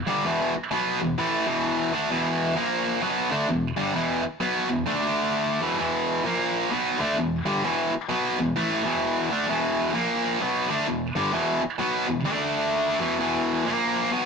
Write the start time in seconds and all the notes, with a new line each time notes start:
0.07 G2 D3 G3
0.25 E2 B2 E3
0.55 muted distorted electric guitar stroke
0.71 B2 F#3 B3
1.01 E2 B2
1.18 A2 E3 A3
1.46 E2 B2 E3
1.93 D3 A3 D4
2.10 E2 B2 E3
2.56 A#2 F3 A#3
3.02 B2 F#3 B3
3.31 D3 A3 D4
3.48 E2 B2
3.77 G2 D3 G3
3.94 E2 B2 E3
4.23 muted distorted electric guitar stroke
4.40 B2 F#3 B3
4.69 E2 B2
4.86 D3 A3 D4
5.61 E2 B2 E3
5.78 E2 B2 E3
6.24 A#2 F3 A#3
6.71 B2 F#3 B3
6.99 D3 A3 D4
7.17 E2 B2
7.46 G2 D3 G3
7.63 E2 B2 E3
7.92 muted distorted electric guitar stroke
8.09 B2 F#3 B3
8.39 E2 B2
8.56 A2 E3 A3
8.84 E2 B2 E3
9.31 D3 A3 D4
9.48 E2 B2 E3
9.94 A#2 F3 A#3
10.41 B2 F#3 B3
10.69 D3 A3 D4
10.87 E2 B2
11.16 G2 D3 G3
11.32 E2 B2 E3
11.63 muted distorted electric guitar stroke
11.79 B2 F#3 B3
12.08 E2 B2
12.25 D3 A3 D4
13.00 E2 B2 E3
13.20 E2 B2 E3
13.65 A#2 F3 A#3
14.12 B2 F#3 B3